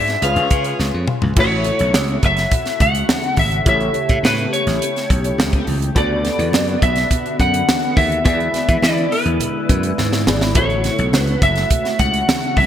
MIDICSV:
0, 0, Header, 1, 7, 480
1, 0, Start_track
1, 0, Tempo, 574163
1, 1144, Time_signature, 4, 2, 24, 8
1, 10588, End_track
2, 0, Start_track
2, 0, Title_t, "Lead electric guitar"
2, 0, Program_c, 0, 29
2, 0, Note_on_c, 0, 76, 82
2, 196, Note_on_c, 0, 77, 82
2, 198, Note_off_c, 0, 76, 0
2, 637, Note_off_c, 0, 77, 0
2, 1172, Note_on_c, 0, 73, 83
2, 1882, Note_off_c, 0, 73, 0
2, 1886, Note_on_c, 0, 76, 90
2, 2355, Note_on_c, 0, 78, 101
2, 2369, Note_off_c, 0, 76, 0
2, 2837, Note_on_c, 0, 76, 86
2, 2843, Note_off_c, 0, 78, 0
2, 3073, Note_off_c, 0, 76, 0
2, 3084, Note_on_c, 0, 76, 94
2, 3561, Note_on_c, 0, 71, 80
2, 3567, Note_off_c, 0, 76, 0
2, 3775, Note_off_c, 0, 71, 0
2, 3786, Note_on_c, 0, 73, 77
2, 4710, Note_off_c, 0, 73, 0
2, 4996, Note_on_c, 0, 74, 92
2, 5707, Note_off_c, 0, 74, 0
2, 5710, Note_on_c, 0, 76, 93
2, 6153, Note_off_c, 0, 76, 0
2, 6192, Note_on_c, 0, 78, 107
2, 6665, Note_on_c, 0, 76, 90
2, 6681, Note_off_c, 0, 78, 0
2, 6888, Note_off_c, 0, 76, 0
2, 6898, Note_on_c, 0, 76, 91
2, 7380, Note_off_c, 0, 76, 0
2, 7384, Note_on_c, 0, 74, 78
2, 7626, Note_on_c, 0, 71, 67
2, 7630, Note_off_c, 0, 74, 0
2, 8552, Note_off_c, 0, 71, 0
2, 8834, Note_on_c, 0, 73, 91
2, 9361, Note_off_c, 0, 73, 0
2, 9361, Note_on_c, 0, 71, 91
2, 9553, Note_off_c, 0, 71, 0
2, 9557, Note_on_c, 0, 76, 95
2, 10029, Note_on_c, 0, 78, 97
2, 10045, Note_off_c, 0, 76, 0
2, 10514, Note_on_c, 0, 76, 88
2, 10521, Note_off_c, 0, 78, 0
2, 10588, Note_off_c, 0, 76, 0
2, 10588, End_track
3, 0, Start_track
3, 0, Title_t, "Horn section"
3, 0, Program_c, 1, 61
3, 184, Note_on_c, 1, 68, 77
3, 186, Note_on_c, 1, 65, 67
3, 189, Note_on_c, 1, 73, 84
3, 890, Note_off_c, 1, 68, 0
3, 891, Note_off_c, 1, 65, 0
3, 892, Note_off_c, 1, 73, 0
3, 10588, End_track
4, 0, Start_track
4, 0, Title_t, "Grand piano"
4, 0, Program_c, 2, 0
4, 0, Control_c, 2, 64, 127
4, 0, Note_on_c, 2, 56, 64
4, 0, Note_on_c, 2, 62, 57
4, 0, Note_on_c, 2, 66, 53
4, 0, Note_on_c, 2, 71, 64
4, 161, Note_off_c, 2, 56, 0
4, 166, Note_off_c, 2, 62, 0
4, 168, Note_off_c, 2, 66, 0
4, 171, Note_off_c, 2, 71, 0
4, 177, Note_on_c, 2, 56, 57
4, 184, Note_on_c, 2, 61, 47
4, 194, Note_on_c, 2, 65, 51
4, 195, Control_c, 2, 64, 0
4, 198, Note_on_c, 2, 71, 66
4, 329, Control_c, 2, 64, 127
4, 1121, Note_off_c, 2, 56, 0
4, 1125, Note_off_c, 2, 61, 0
4, 1130, Note_off_c, 2, 65, 0
4, 1132, Note_off_c, 2, 71, 0
4, 1140, Note_on_c, 2, 57, 60
4, 1145, Note_on_c, 2, 64, 59
4, 1151, Note_on_c, 2, 66, 55
4, 1156, Control_c, 2, 64, 0
4, 1159, Note_on_c, 2, 73, 62
4, 1315, Control_c, 2, 64, 127
4, 3027, Note_off_c, 2, 57, 0
4, 3030, Note_off_c, 2, 64, 0
4, 3033, Note_off_c, 2, 66, 0
4, 3037, Note_off_c, 2, 73, 0
4, 3055, Note_on_c, 2, 57, 58
4, 3059, Note_on_c, 2, 64, 60
4, 3068, Note_on_c, 2, 67, 51
4, 3075, Control_c, 2, 64, 0
4, 3075, Note_on_c, 2, 73, 68
4, 3203, Control_c, 2, 64, 127
4, 4944, Note_off_c, 2, 57, 0
4, 4947, Note_off_c, 2, 64, 0
4, 4951, Note_off_c, 2, 67, 0
4, 4955, Note_off_c, 2, 73, 0
4, 4973, Note_on_c, 2, 59, 64
4, 4978, Note_on_c, 2, 66, 59
4, 4984, Note_on_c, 2, 69, 60
4, 4991, Control_c, 2, 64, 0
4, 4993, Note_on_c, 2, 74, 73
4, 5145, Control_c, 2, 64, 127
4, 6864, Note_off_c, 2, 59, 0
4, 6867, Note_off_c, 2, 66, 0
4, 6870, Note_off_c, 2, 69, 0
4, 6874, Note_off_c, 2, 74, 0
4, 6892, Note_on_c, 2, 59, 63
4, 6897, Note_on_c, 2, 64, 58
4, 6905, Note_on_c, 2, 68, 54
4, 6908, Note_on_c, 2, 74, 69
4, 6911, Control_c, 2, 64, 0
4, 7072, Control_c, 2, 64, 127
4, 8544, Note_off_c, 2, 59, 0
4, 8547, Note_off_c, 2, 64, 0
4, 8551, Note_off_c, 2, 68, 0
4, 8553, Note_off_c, 2, 74, 0
4, 8589, Note_on_c, 2, 59, 58
4, 8589, Note_on_c, 2, 64, 51
4, 8592, Note_on_c, 2, 68, 47
4, 8595, Note_on_c, 2, 74, 57
4, 8815, Note_off_c, 2, 64, 0
4, 8823, Note_on_c, 2, 57, 60
4, 8826, Note_off_c, 2, 59, 0
4, 8828, Note_off_c, 2, 68, 0
4, 8828, Note_on_c, 2, 64, 55
4, 8829, Note_off_c, 2, 74, 0
4, 8833, Control_c, 2, 64, 0
4, 8834, Note_on_c, 2, 66, 60
4, 8840, Note_on_c, 2, 73, 67
4, 8967, Control_c, 2, 64, 127
4, 10588, Note_off_c, 2, 57, 0
4, 10588, Note_off_c, 2, 64, 0
4, 10588, Note_off_c, 2, 66, 0
4, 10588, Note_off_c, 2, 73, 0
4, 10588, End_track
5, 0, Start_track
5, 0, Title_t, "Ambient pad"
5, 0, Program_c, 3, 92
5, 1149, Note_on_c, 3, 49, 79
5, 1150, Note_on_c, 3, 66, 88
5, 1152, Note_on_c, 3, 57, 72
5, 3047, Note_off_c, 3, 66, 0
5, 3054, Note_on_c, 3, 67, 82
5, 4951, Note_off_c, 3, 49, 0
5, 4952, Note_off_c, 3, 57, 0
5, 4958, Note_off_c, 3, 67, 0
5, 4975, Note_on_c, 3, 66, 86
5, 4978, Note_on_c, 3, 50, 80
5, 4978, Note_on_c, 3, 59, 76
5, 6879, Note_off_c, 3, 66, 0
5, 6881, Note_off_c, 3, 59, 0
5, 6898, Note_on_c, 3, 64, 84
5, 6901, Note_on_c, 3, 56, 66
5, 8788, Note_off_c, 3, 50, 0
5, 8802, Note_off_c, 3, 64, 0
5, 8804, Note_off_c, 3, 56, 0
5, 8824, Note_on_c, 3, 57, 67
5, 8829, Note_on_c, 3, 49, 81
5, 8830, Note_on_c, 3, 66, 88
5, 10588, Note_off_c, 3, 49, 0
5, 10588, Note_off_c, 3, 57, 0
5, 10588, Note_off_c, 3, 66, 0
5, 10588, End_track
6, 0, Start_track
6, 0, Title_t, "Slap bass"
6, 0, Program_c, 4, 36
6, 0, Note_on_c, 4, 44, 78
6, 128, Note_off_c, 4, 44, 0
6, 183, Note_on_c, 4, 37, 102
6, 275, Note_off_c, 4, 37, 0
6, 299, Note_on_c, 4, 37, 83
6, 393, Note_off_c, 4, 37, 0
6, 422, Note_on_c, 4, 49, 85
6, 606, Note_off_c, 4, 49, 0
6, 663, Note_on_c, 4, 37, 74
6, 755, Note_off_c, 4, 37, 0
6, 786, Note_on_c, 4, 41, 65
6, 877, Note_off_c, 4, 41, 0
6, 1031, Note_on_c, 4, 37, 85
6, 1120, Note_off_c, 4, 37, 0
6, 1141, Note_on_c, 4, 33, 99
6, 1417, Note_off_c, 4, 33, 0
6, 1507, Note_on_c, 4, 35, 75
6, 1631, Note_off_c, 4, 35, 0
6, 1631, Note_on_c, 4, 37, 91
6, 1812, Note_off_c, 4, 37, 0
6, 1865, Note_on_c, 4, 30, 74
6, 2048, Note_off_c, 4, 30, 0
6, 2342, Note_on_c, 4, 37, 82
6, 2526, Note_off_c, 4, 37, 0
6, 2820, Note_on_c, 4, 32, 71
6, 3004, Note_off_c, 4, 32, 0
6, 3063, Note_on_c, 4, 33, 98
6, 3246, Note_off_c, 4, 33, 0
6, 3421, Note_on_c, 4, 45, 98
6, 3513, Note_off_c, 4, 45, 0
6, 3537, Note_on_c, 4, 45, 93
6, 3723, Note_off_c, 4, 45, 0
6, 3902, Note_on_c, 4, 33, 65
6, 3994, Note_off_c, 4, 33, 0
6, 4261, Note_on_c, 4, 35, 85
6, 4445, Note_off_c, 4, 35, 0
6, 4499, Note_on_c, 4, 37, 83
6, 4684, Note_off_c, 4, 37, 0
6, 4742, Note_on_c, 4, 37, 73
6, 4925, Note_off_c, 4, 37, 0
6, 4982, Note_on_c, 4, 38, 96
6, 5257, Note_off_c, 4, 38, 0
6, 5340, Note_on_c, 4, 40, 84
6, 5432, Note_off_c, 4, 40, 0
6, 5462, Note_on_c, 4, 42, 82
6, 5645, Note_off_c, 4, 42, 0
6, 5700, Note_on_c, 4, 35, 88
6, 5884, Note_off_c, 4, 35, 0
6, 6182, Note_on_c, 4, 42, 89
6, 6365, Note_off_c, 4, 42, 0
6, 6658, Note_on_c, 4, 39, 76
6, 6843, Note_off_c, 4, 39, 0
6, 6898, Note_on_c, 4, 40, 108
6, 7083, Note_off_c, 4, 40, 0
6, 7261, Note_on_c, 4, 52, 88
6, 7353, Note_off_c, 4, 52, 0
6, 7377, Note_on_c, 4, 52, 93
6, 7563, Note_off_c, 4, 52, 0
6, 7737, Note_on_c, 4, 40, 70
6, 7831, Note_off_c, 4, 40, 0
6, 8102, Note_on_c, 4, 42, 92
6, 8285, Note_off_c, 4, 42, 0
6, 8346, Note_on_c, 4, 44, 75
6, 8586, Note_on_c, 4, 32, 73
6, 8599, Note_off_c, 4, 44, 0
6, 8820, Note_off_c, 4, 32, 0
6, 8820, Note_on_c, 4, 33, 93
6, 9096, Note_off_c, 4, 33, 0
6, 9185, Note_on_c, 4, 35, 81
6, 9307, Note_off_c, 4, 35, 0
6, 9307, Note_on_c, 4, 37, 86
6, 9489, Note_off_c, 4, 37, 0
6, 9546, Note_on_c, 4, 30, 92
6, 9728, Note_off_c, 4, 30, 0
6, 10028, Note_on_c, 4, 37, 88
6, 10210, Note_off_c, 4, 37, 0
6, 10505, Note_on_c, 4, 36, 80
6, 10588, Note_off_c, 4, 36, 0
6, 10588, End_track
7, 0, Start_track
7, 0, Title_t, "Drums"
7, 63, Note_on_c, 9, 42, 44
7, 73, Note_on_c, 9, 38, 29
7, 146, Note_off_c, 9, 42, 0
7, 156, Note_off_c, 9, 38, 0
7, 186, Note_on_c, 9, 42, 94
7, 269, Note_off_c, 9, 42, 0
7, 302, Note_on_c, 9, 42, 45
7, 386, Note_off_c, 9, 42, 0
7, 422, Note_on_c, 9, 42, 67
7, 425, Note_on_c, 9, 36, 82
7, 506, Note_off_c, 9, 42, 0
7, 509, Note_off_c, 9, 36, 0
7, 538, Note_on_c, 9, 42, 55
7, 622, Note_off_c, 9, 42, 0
7, 665, Note_on_c, 9, 38, 45
7, 748, Note_off_c, 9, 38, 0
7, 899, Note_on_c, 9, 45, 74
7, 982, Note_off_c, 9, 45, 0
7, 1019, Note_on_c, 9, 43, 75
7, 1102, Note_off_c, 9, 43, 0
7, 1140, Note_on_c, 9, 49, 85
7, 1143, Note_on_c, 9, 36, 119
7, 1145, Note_on_c, 9, 62, 46
7, 1224, Note_off_c, 9, 49, 0
7, 1227, Note_off_c, 9, 36, 0
7, 1229, Note_off_c, 9, 62, 0
7, 1374, Note_on_c, 9, 42, 75
7, 1383, Note_on_c, 9, 62, 44
7, 1458, Note_off_c, 9, 42, 0
7, 1466, Note_off_c, 9, 62, 0
7, 1498, Note_on_c, 9, 42, 48
7, 1581, Note_off_c, 9, 42, 0
7, 1623, Note_on_c, 9, 38, 97
7, 1624, Note_on_c, 9, 63, 80
7, 1707, Note_off_c, 9, 38, 0
7, 1708, Note_off_c, 9, 63, 0
7, 1738, Note_on_c, 9, 42, 30
7, 1822, Note_off_c, 9, 42, 0
7, 1862, Note_on_c, 9, 42, 70
7, 1865, Note_on_c, 9, 36, 88
7, 1946, Note_off_c, 9, 42, 0
7, 1948, Note_off_c, 9, 36, 0
7, 1978, Note_on_c, 9, 42, 42
7, 1988, Note_on_c, 9, 38, 31
7, 2062, Note_off_c, 9, 42, 0
7, 2071, Note_off_c, 9, 38, 0
7, 2100, Note_on_c, 9, 64, 65
7, 2102, Note_on_c, 9, 42, 91
7, 2104, Note_on_c, 9, 36, 89
7, 2183, Note_off_c, 9, 64, 0
7, 2185, Note_off_c, 9, 42, 0
7, 2187, Note_off_c, 9, 36, 0
7, 2220, Note_on_c, 9, 42, 34
7, 2223, Note_on_c, 9, 38, 35
7, 2304, Note_off_c, 9, 42, 0
7, 2307, Note_off_c, 9, 38, 0
7, 2343, Note_on_c, 9, 42, 73
7, 2344, Note_on_c, 9, 36, 81
7, 2345, Note_on_c, 9, 64, 57
7, 2426, Note_off_c, 9, 42, 0
7, 2428, Note_off_c, 9, 36, 0
7, 2429, Note_off_c, 9, 64, 0
7, 2464, Note_on_c, 9, 42, 60
7, 2547, Note_off_c, 9, 42, 0
7, 2582, Note_on_c, 9, 63, 68
7, 2583, Note_on_c, 9, 38, 116
7, 2665, Note_off_c, 9, 63, 0
7, 2667, Note_off_c, 9, 38, 0
7, 2703, Note_on_c, 9, 42, 35
7, 2787, Note_off_c, 9, 42, 0
7, 2814, Note_on_c, 9, 46, 69
7, 2820, Note_on_c, 9, 36, 76
7, 2826, Note_on_c, 9, 63, 58
7, 2897, Note_off_c, 9, 46, 0
7, 2904, Note_off_c, 9, 36, 0
7, 2909, Note_off_c, 9, 63, 0
7, 2941, Note_on_c, 9, 42, 52
7, 3025, Note_off_c, 9, 42, 0
7, 3060, Note_on_c, 9, 42, 81
7, 3061, Note_on_c, 9, 36, 119
7, 3061, Note_on_c, 9, 62, 45
7, 3143, Note_off_c, 9, 42, 0
7, 3144, Note_off_c, 9, 62, 0
7, 3145, Note_off_c, 9, 36, 0
7, 3181, Note_on_c, 9, 42, 31
7, 3264, Note_off_c, 9, 42, 0
7, 3295, Note_on_c, 9, 42, 63
7, 3301, Note_on_c, 9, 62, 45
7, 3379, Note_off_c, 9, 42, 0
7, 3384, Note_off_c, 9, 62, 0
7, 3419, Note_on_c, 9, 42, 50
7, 3423, Note_on_c, 9, 36, 87
7, 3503, Note_off_c, 9, 42, 0
7, 3507, Note_off_c, 9, 36, 0
7, 3547, Note_on_c, 9, 63, 69
7, 3552, Note_on_c, 9, 38, 100
7, 3631, Note_off_c, 9, 63, 0
7, 3636, Note_off_c, 9, 38, 0
7, 3662, Note_on_c, 9, 42, 31
7, 3745, Note_off_c, 9, 42, 0
7, 3791, Note_on_c, 9, 42, 68
7, 3875, Note_off_c, 9, 42, 0
7, 3903, Note_on_c, 9, 42, 42
7, 3913, Note_on_c, 9, 38, 31
7, 3986, Note_off_c, 9, 42, 0
7, 3996, Note_off_c, 9, 38, 0
7, 4030, Note_on_c, 9, 42, 91
7, 4113, Note_off_c, 9, 42, 0
7, 4150, Note_on_c, 9, 42, 31
7, 4153, Note_on_c, 9, 38, 39
7, 4233, Note_off_c, 9, 42, 0
7, 4237, Note_off_c, 9, 38, 0
7, 4263, Note_on_c, 9, 64, 65
7, 4264, Note_on_c, 9, 36, 78
7, 4267, Note_on_c, 9, 42, 72
7, 4346, Note_off_c, 9, 64, 0
7, 4348, Note_off_c, 9, 36, 0
7, 4351, Note_off_c, 9, 42, 0
7, 4384, Note_on_c, 9, 42, 57
7, 4468, Note_off_c, 9, 42, 0
7, 4501, Note_on_c, 9, 63, 66
7, 4512, Note_on_c, 9, 38, 109
7, 4585, Note_off_c, 9, 63, 0
7, 4595, Note_off_c, 9, 38, 0
7, 4623, Note_on_c, 9, 36, 86
7, 4624, Note_on_c, 9, 42, 31
7, 4707, Note_off_c, 9, 36, 0
7, 4708, Note_off_c, 9, 42, 0
7, 4742, Note_on_c, 9, 46, 63
7, 4747, Note_on_c, 9, 63, 64
7, 4825, Note_off_c, 9, 46, 0
7, 4831, Note_off_c, 9, 63, 0
7, 4868, Note_on_c, 9, 42, 58
7, 4951, Note_off_c, 9, 42, 0
7, 4979, Note_on_c, 9, 62, 48
7, 4982, Note_on_c, 9, 36, 113
7, 4983, Note_on_c, 9, 42, 82
7, 5062, Note_off_c, 9, 62, 0
7, 5065, Note_off_c, 9, 36, 0
7, 5067, Note_off_c, 9, 42, 0
7, 5222, Note_on_c, 9, 42, 72
7, 5222, Note_on_c, 9, 62, 47
7, 5232, Note_on_c, 9, 38, 33
7, 5306, Note_off_c, 9, 42, 0
7, 5306, Note_off_c, 9, 62, 0
7, 5316, Note_off_c, 9, 38, 0
7, 5346, Note_on_c, 9, 42, 49
7, 5429, Note_off_c, 9, 42, 0
7, 5461, Note_on_c, 9, 63, 73
7, 5469, Note_on_c, 9, 38, 102
7, 5545, Note_off_c, 9, 63, 0
7, 5552, Note_off_c, 9, 38, 0
7, 5581, Note_on_c, 9, 42, 30
7, 5665, Note_off_c, 9, 42, 0
7, 5703, Note_on_c, 9, 36, 96
7, 5705, Note_on_c, 9, 42, 65
7, 5787, Note_off_c, 9, 36, 0
7, 5788, Note_off_c, 9, 42, 0
7, 5816, Note_on_c, 9, 42, 49
7, 5825, Note_on_c, 9, 38, 31
7, 5899, Note_off_c, 9, 42, 0
7, 5909, Note_off_c, 9, 38, 0
7, 5939, Note_on_c, 9, 62, 30
7, 5939, Note_on_c, 9, 64, 66
7, 5942, Note_on_c, 9, 36, 93
7, 5944, Note_on_c, 9, 42, 102
7, 6022, Note_off_c, 9, 62, 0
7, 6022, Note_off_c, 9, 64, 0
7, 6026, Note_off_c, 9, 36, 0
7, 6027, Note_off_c, 9, 42, 0
7, 6067, Note_on_c, 9, 42, 35
7, 6151, Note_off_c, 9, 42, 0
7, 6182, Note_on_c, 9, 64, 59
7, 6183, Note_on_c, 9, 36, 78
7, 6185, Note_on_c, 9, 42, 67
7, 6266, Note_off_c, 9, 36, 0
7, 6266, Note_off_c, 9, 64, 0
7, 6268, Note_off_c, 9, 42, 0
7, 6302, Note_on_c, 9, 42, 59
7, 6386, Note_off_c, 9, 42, 0
7, 6424, Note_on_c, 9, 63, 67
7, 6426, Note_on_c, 9, 38, 120
7, 6508, Note_off_c, 9, 63, 0
7, 6510, Note_off_c, 9, 38, 0
7, 6546, Note_on_c, 9, 42, 33
7, 6629, Note_off_c, 9, 42, 0
7, 6661, Note_on_c, 9, 36, 87
7, 6661, Note_on_c, 9, 46, 70
7, 6667, Note_on_c, 9, 63, 58
7, 6744, Note_off_c, 9, 46, 0
7, 6745, Note_off_c, 9, 36, 0
7, 6751, Note_off_c, 9, 63, 0
7, 6788, Note_on_c, 9, 42, 52
7, 6872, Note_off_c, 9, 42, 0
7, 6896, Note_on_c, 9, 62, 48
7, 6902, Note_on_c, 9, 36, 120
7, 6904, Note_on_c, 9, 42, 84
7, 6980, Note_off_c, 9, 62, 0
7, 6986, Note_off_c, 9, 36, 0
7, 6988, Note_off_c, 9, 42, 0
7, 7025, Note_on_c, 9, 42, 33
7, 7109, Note_off_c, 9, 42, 0
7, 7137, Note_on_c, 9, 62, 43
7, 7139, Note_on_c, 9, 42, 76
7, 7149, Note_on_c, 9, 38, 29
7, 7221, Note_off_c, 9, 62, 0
7, 7223, Note_off_c, 9, 42, 0
7, 7233, Note_off_c, 9, 38, 0
7, 7262, Note_on_c, 9, 36, 89
7, 7262, Note_on_c, 9, 42, 48
7, 7345, Note_off_c, 9, 42, 0
7, 7346, Note_off_c, 9, 36, 0
7, 7377, Note_on_c, 9, 63, 79
7, 7386, Note_on_c, 9, 38, 88
7, 7461, Note_off_c, 9, 63, 0
7, 7470, Note_off_c, 9, 38, 0
7, 7502, Note_on_c, 9, 42, 30
7, 7585, Note_off_c, 9, 42, 0
7, 7624, Note_on_c, 9, 46, 69
7, 7708, Note_off_c, 9, 46, 0
7, 7738, Note_on_c, 9, 42, 42
7, 7821, Note_off_c, 9, 42, 0
7, 7858, Note_on_c, 9, 62, 31
7, 7858, Note_on_c, 9, 64, 65
7, 7863, Note_on_c, 9, 42, 96
7, 7941, Note_off_c, 9, 62, 0
7, 7941, Note_off_c, 9, 64, 0
7, 7947, Note_off_c, 9, 42, 0
7, 8104, Note_on_c, 9, 36, 77
7, 8104, Note_on_c, 9, 42, 76
7, 8107, Note_on_c, 9, 64, 54
7, 8187, Note_off_c, 9, 42, 0
7, 8188, Note_off_c, 9, 36, 0
7, 8191, Note_off_c, 9, 64, 0
7, 8220, Note_on_c, 9, 42, 65
7, 8304, Note_off_c, 9, 42, 0
7, 8345, Note_on_c, 9, 38, 55
7, 8349, Note_on_c, 9, 63, 69
7, 8429, Note_off_c, 9, 38, 0
7, 8432, Note_off_c, 9, 63, 0
7, 8465, Note_on_c, 9, 38, 60
7, 8549, Note_off_c, 9, 38, 0
7, 8586, Note_on_c, 9, 38, 87
7, 8591, Note_on_c, 9, 63, 66
7, 8670, Note_off_c, 9, 38, 0
7, 8675, Note_off_c, 9, 63, 0
7, 8706, Note_on_c, 9, 38, 86
7, 8789, Note_off_c, 9, 38, 0
7, 8819, Note_on_c, 9, 42, 93
7, 8823, Note_on_c, 9, 36, 116
7, 8828, Note_on_c, 9, 62, 49
7, 8903, Note_off_c, 9, 42, 0
7, 8907, Note_off_c, 9, 36, 0
7, 8912, Note_off_c, 9, 62, 0
7, 8945, Note_on_c, 9, 42, 31
7, 9028, Note_off_c, 9, 42, 0
7, 9062, Note_on_c, 9, 42, 79
7, 9065, Note_on_c, 9, 62, 44
7, 9072, Note_on_c, 9, 38, 32
7, 9146, Note_off_c, 9, 42, 0
7, 9149, Note_off_c, 9, 62, 0
7, 9156, Note_off_c, 9, 38, 0
7, 9184, Note_on_c, 9, 42, 45
7, 9267, Note_off_c, 9, 42, 0
7, 9307, Note_on_c, 9, 63, 84
7, 9311, Note_on_c, 9, 38, 88
7, 9390, Note_off_c, 9, 63, 0
7, 9395, Note_off_c, 9, 38, 0
7, 9424, Note_on_c, 9, 42, 32
7, 9508, Note_off_c, 9, 42, 0
7, 9547, Note_on_c, 9, 36, 102
7, 9547, Note_on_c, 9, 42, 73
7, 9630, Note_off_c, 9, 36, 0
7, 9631, Note_off_c, 9, 42, 0
7, 9660, Note_on_c, 9, 42, 41
7, 9670, Note_on_c, 9, 38, 30
7, 9744, Note_off_c, 9, 42, 0
7, 9754, Note_off_c, 9, 38, 0
7, 9785, Note_on_c, 9, 42, 101
7, 9786, Note_on_c, 9, 62, 32
7, 9786, Note_on_c, 9, 64, 65
7, 9787, Note_on_c, 9, 36, 92
7, 9868, Note_off_c, 9, 42, 0
7, 9869, Note_off_c, 9, 62, 0
7, 9869, Note_off_c, 9, 64, 0
7, 9870, Note_off_c, 9, 36, 0
7, 9909, Note_on_c, 9, 42, 33
7, 9912, Note_on_c, 9, 38, 36
7, 9992, Note_off_c, 9, 42, 0
7, 9995, Note_off_c, 9, 38, 0
7, 10025, Note_on_c, 9, 42, 80
7, 10027, Note_on_c, 9, 64, 60
7, 10028, Note_on_c, 9, 36, 78
7, 10109, Note_off_c, 9, 42, 0
7, 10111, Note_off_c, 9, 36, 0
7, 10111, Note_off_c, 9, 64, 0
7, 10146, Note_on_c, 9, 42, 65
7, 10229, Note_off_c, 9, 42, 0
7, 10269, Note_on_c, 9, 63, 70
7, 10273, Note_on_c, 9, 38, 114
7, 10353, Note_off_c, 9, 63, 0
7, 10356, Note_off_c, 9, 38, 0
7, 10390, Note_on_c, 9, 42, 32
7, 10473, Note_off_c, 9, 42, 0
7, 10505, Note_on_c, 9, 46, 72
7, 10507, Note_on_c, 9, 36, 85
7, 10514, Note_on_c, 9, 63, 61
7, 10588, Note_off_c, 9, 36, 0
7, 10588, Note_off_c, 9, 46, 0
7, 10588, Note_off_c, 9, 63, 0
7, 10588, End_track
0, 0, End_of_file